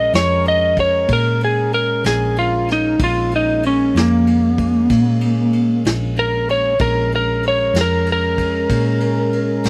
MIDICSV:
0, 0, Header, 1, 5, 480
1, 0, Start_track
1, 0, Key_signature, -5, "minor"
1, 0, Tempo, 633580
1, 2271, Time_signature, 12, 3, 24, 8
1, 7344, End_track
2, 0, Start_track
2, 0, Title_t, "Lead electric guitar"
2, 0, Program_c, 0, 29
2, 0, Note_on_c, 0, 75, 69
2, 105, Note_off_c, 0, 75, 0
2, 117, Note_on_c, 0, 73, 66
2, 345, Note_off_c, 0, 73, 0
2, 366, Note_on_c, 0, 75, 71
2, 590, Note_off_c, 0, 75, 0
2, 607, Note_on_c, 0, 73, 67
2, 831, Note_off_c, 0, 73, 0
2, 855, Note_on_c, 0, 70, 89
2, 1075, Note_off_c, 0, 70, 0
2, 1095, Note_on_c, 0, 68, 70
2, 1315, Note_off_c, 0, 68, 0
2, 1321, Note_on_c, 0, 70, 78
2, 1548, Note_off_c, 0, 70, 0
2, 1564, Note_on_c, 0, 68, 75
2, 1790, Note_off_c, 0, 68, 0
2, 1808, Note_on_c, 0, 65, 71
2, 2033, Note_off_c, 0, 65, 0
2, 2064, Note_on_c, 0, 63, 77
2, 2281, Note_off_c, 0, 63, 0
2, 2301, Note_on_c, 0, 65, 86
2, 2520, Note_off_c, 0, 65, 0
2, 2543, Note_on_c, 0, 63, 75
2, 2761, Note_off_c, 0, 63, 0
2, 2777, Note_on_c, 0, 61, 72
2, 2998, Note_off_c, 0, 61, 0
2, 3012, Note_on_c, 0, 58, 87
2, 4412, Note_off_c, 0, 58, 0
2, 4691, Note_on_c, 0, 70, 89
2, 4914, Note_off_c, 0, 70, 0
2, 4930, Note_on_c, 0, 73, 75
2, 5154, Note_off_c, 0, 73, 0
2, 5160, Note_on_c, 0, 70, 83
2, 5389, Note_off_c, 0, 70, 0
2, 5421, Note_on_c, 0, 70, 72
2, 5639, Note_off_c, 0, 70, 0
2, 5665, Note_on_c, 0, 73, 77
2, 5881, Note_off_c, 0, 73, 0
2, 5916, Note_on_c, 0, 70, 81
2, 6126, Note_off_c, 0, 70, 0
2, 6154, Note_on_c, 0, 70, 92
2, 7344, Note_off_c, 0, 70, 0
2, 7344, End_track
3, 0, Start_track
3, 0, Title_t, "Tonewheel organ"
3, 0, Program_c, 1, 16
3, 0, Note_on_c, 1, 56, 59
3, 0, Note_on_c, 1, 61, 54
3, 0, Note_on_c, 1, 70, 63
3, 2240, Note_off_c, 1, 61, 0
3, 2243, Note_off_c, 1, 56, 0
3, 2243, Note_off_c, 1, 70, 0
3, 2249, Note_on_c, 1, 61, 56
3, 2255, Note_on_c, 1, 58, 60
3, 2257, Note_on_c, 1, 56, 60
3, 5112, Note_off_c, 1, 61, 0
3, 5114, Note_off_c, 1, 58, 0
3, 5116, Note_off_c, 1, 56, 0
3, 5151, Note_on_c, 1, 70, 63
3, 5154, Note_on_c, 1, 56, 62
3, 5162, Note_on_c, 1, 61, 66
3, 7344, Note_off_c, 1, 56, 0
3, 7344, Note_off_c, 1, 61, 0
3, 7344, Note_off_c, 1, 70, 0
3, 7344, End_track
4, 0, Start_track
4, 0, Title_t, "Fingered electric bass"
4, 0, Program_c, 2, 33
4, 102, Note_on_c, 2, 41, 90
4, 796, Note_off_c, 2, 41, 0
4, 822, Note_on_c, 2, 46, 74
4, 1549, Note_on_c, 2, 34, 93
4, 1560, Note_off_c, 2, 46, 0
4, 2240, Note_off_c, 2, 34, 0
4, 2270, Note_on_c, 2, 34, 98
4, 2961, Note_off_c, 2, 34, 0
4, 2990, Note_on_c, 2, 41, 97
4, 3681, Note_off_c, 2, 41, 0
4, 3718, Note_on_c, 2, 46, 74
4, 4437, Note_on_c, 2, 34, 91
4, 4448, Note_off_c, 2, 46, 0
4, 5124, Note_off_c, 2, 34, 0
4, 5152, Note_on_c, 2, 34, 106
4, 5841, Note_off_c, 2, 34, 0
4, 5862, Note_on_c, 2, 41, 92
4, 6555, Note_off_c, 2, 41, 0
4, 6591, Note_on_c, 2, 46, 73
4, 7310, Note_on_c, 2, 34, 89
4, 7321, Note_off_c, 2, 46, 0
4, 7344, Note_off_c, 2, 34, 0
4, 7344, End_track
5, 0, Start_track
5, 0, Title_t, "Drums"
5, 101, Note_on_c, 9, 51, 66
5, 114, Note_on_c, 9, 38, 97
5, 177, Note_off_c, 9, 51, 0
5, 190, Note_off_c, 9, 38, 0
5, 341, Note_on_c, 9, 51, 53
5, 417, Note_off_c, 9, 51, 0
5, 583, Note_on_c, 9, 36, 77
5, 584, Note_on_c, 9, 51, 54
5, 659, Note_off_c, 9, 36, 0
5, 659, Note_off_c, 9, 51, 0
5, 821, Note_on_c, 9, 51, 66
5, 825, Note_on_c, 9, 36, 96
5, 897, Note_off_c, 9, 51, 0
5, 900, Note_off_c, 9, 36, 0
5, 1066, Note_on_c, 9, 51, 58
5, 1142, Note_off_c, 9, 51, 0
5, 1307, Note_on_c, 9, 51, 51
5, 1383, Note_off_c, 9, 51, 0
5, 1547, Note_on_c, 9, 51, 73
5, 1560, Note_on_c, 9, 38, 102
5, 1622, Note_off_c, 9, 51, 0
5, 1635, Note_off_c, 9, 38, 0
5, 1790, Note_on_c, 9, 51, 60
5, 1866, Note_off_c, 9, 51, 0
5, 2033, Note_on_c, 9, 51, 59
5, 2046, Note_on_c, 9, 38, 29
5, 2109, Note_off_c, 9, 51, 0
5, 2122, Note_off_c, 9, 38, 0
5, 2268, Note_on_c, 9, 51, 79
5, 2270, Note_on_c, 9, 36, 104
5, 2344, Note_off_c, 9, 51, 0
5, 2346, Note_off_c, 9, 36, 0
5, 2511, Note_on_c, 9, 51, 58
5, 2586, Note_off_c, 9, 51, 0
5, 2750, Note_on_c, 9, 51, 61
5, 2826, Note_off_c, 9, 51, 0
5, 2996, Note_on_c, 9, 51, 72
5, 3009, Note_on_c, 9, 38, 95
5, 3072, Note_off_c, 9, 51, 0
5, 3085, Note_off_c, 9, 38, 0
5, 3234, Note_on_c, 9, 51, 58
5, 3309, Note_off_c, 9, 51, 0
5, 3472, Note_on_c, 9, 36, 75
5, 3474, Note_on_c, 9, 51, 59
5, 3548, Note_off_c, 9, 36, 0
5, 3550, Note_off_c, 9, 51, 0
5, 3709, Note_on_c, 9, 51, 71
5, 3712, Note_on_c, 9, 36, 91
5, 3722, Note_on_c, 9, 38, 28
5, 3785, Note_off_c, 9, 51, 0
5, 3788, Note_off_c, 9, 36, 0
5, 3798, Note_off_c, 9, 38, 0
5, 3946, Note_on_c, 9, 51, 61
5, 4022, Note_off_c, 9, 51, 0
5, 4189, Note_on_c, 9, 51, 54
5, 4264, Note_off_c, 9, 51, 0
5, 4431, Note_on_c, 9, 51, 77
5, 4443, Note_on_c, 9, 38, 105
5, 4506, Note_off_c, 9, 51, 0
5, 4519, Note_off_c, 9, 38, 0
5, 4666, Note_on_c, 9, 51, 54
5, 4742, Note_off_c, 9, 51, 0
5, 4915, Note_on_c, 9, 51, 53
5, 4990, Note_off_c, 9, 51, 0
5, 5144, Note_on_c, 9, 51, 75
5, 5150, Note_on_c, 9, 36, 100
5, 5219, Note_off_c, 9, 51, 0
5, 5226, Note_off_c, 9, 36, 0
5, 5393, Note_on_c, 9, 51, 53
5, 5469, Note_off_c, 9, 51, 0
5, 5629, Note_on_c, 9, 51, 55
5, 5705, Note_off_c, 9, 51, 0
5, 5867, Note_on_c, 9, 51, 78
5, 5880, Note_on_c, 9, 38, 99
5, 5943, Note_off_c, 9, 51, 0
5, 5956, Note_off_c, 9, 38, 0
5, 6107, Note_on_c, 9, 51, 61
5, 6183, Note_off_c, 9, 51, 0
5, 6350, Note_on_c, 9, 36, 75
5, 6352, Note_on_c, 9, 51, 58
5, 6425, Note_off_c, 9, 36, 0
5, 6428, Note_off_c, 9, 51, 0
5, 6587, Note_on_c, 9, 51, 76
5, 6588, Note_on_c, 9, 36, 93
5, 6600, Note_on_c, 9, 38, 27
5, 6663, Note_off_c, 9, 51, 0
5, 6664, Note_off_c, 9, 36, 0
5, 6676, Note_off_c, 9, 38, 0
5, 6819, Note_on_c, 9, 51, 63
5, 6895, Note_off_c, 9, 51, 0
5, 7066, Note_on_c, 9, 51, 56
5, 7142, Note_off_c, 9, 51, 0
5, 7301, Note_on_c, 9, 51, 79
5, 7314, Note_on_c, 9, 38, 98
5, 7344, Note_off_c, 9, 38, 0
5, 7344, Note_off_c, 9, 51, 0
5, 7344, End_track
0, 0, End_of_file